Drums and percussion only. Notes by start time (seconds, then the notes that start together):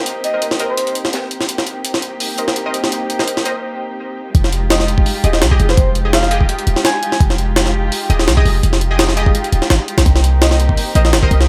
0.06 closed hi-hat
0.24 closed hi-hat
0.42 closed hi-hat
0.51 snare
0.59 closed hi-hat
0.78 closed hi-hat
0.87 closed hi-hat
0.95 closed hi-hat
1.05 snare
1.13 snare, closed hi-hat
1.31 closed hi-hat
1.41 snare
1.49 closed hi-hat
1.58 snare, closed hi-hat
1.66 closed hi-hat
1.85 closed hi-hat
1.94 snare
2.02 closed hi-hat
2.20 closed hi-hat, open hi-hat
2.38 closed hi-hat
2.48 snare
2.56 closed hi-hat
2.74 closed hi-hat
2.84 snare
2.92 closed hi-hat
3.10 closed hi-hat
3.19 snare
3.28 closed hi-hat
3.37 snare
3.45 closed hi-hat
4.35 kick, closed hi-hat
4.44 snare
4.53 closed hi-hat
4.70 snare, closed hi-hat
4.80 snare
4.88 closed hi-hat
4.98 kick
5.06 open hi-hat
5.24 closed hi-hat
5.33 snare
5.42 snare, closed hi-hat
5.51 kick
5.60 closed hi-hat
5.69 snare
5.77 kick, closed hi-hat
5.95 closed hi-hat
6.13 snare, closed hi-hat
6.23 snare
6.31 closed hi-hat
6.41 kick
6.49 closed hi-hat
6.59 closed hi-hat
6.67 closed hi-hat
6.76 snare
6.85 snare, closed hi-hat
7.03 closed hi-hat
7.12 snare
7.20 kick, closed hi-hat
7.30 snare
7.38 closed hi-hat
7.56 snare, closed hi-hat
7.66 snare
7.92 open hi-hat
8.10 closed hi-hat
8.19 snare
8.28 snare, closed hi-hat
8.37 kick
8.46 open hi-hat
8.63 closed hi-hat
8.73 snare
8.81 closed hi-hat
8.99 snare, closed hi-hat
9.09 snare
9.17 closed hi-hat
9.26 kick
9.35 closed hi-hat
9.44 closed hi-hat
9.52 closed hi-hat
9.62 snare
9.70 snare, closed hi-hat
9.88 closed hi-hat
9.98 snare, closed hi-hat
10.06 kick, closed hi-hat
10.16 snare
10.24 closed hi-hat
10.42 snare, closed hi-hat
10.51 snare
10.60 closed hi-hat
10.69 kick
10.77 open hi-hat
10.95 closed hi-hat
11.05 snare
11.13 snare, closed hi-hat
11.23 kick
11.31 closed hi-hat
11.41 snare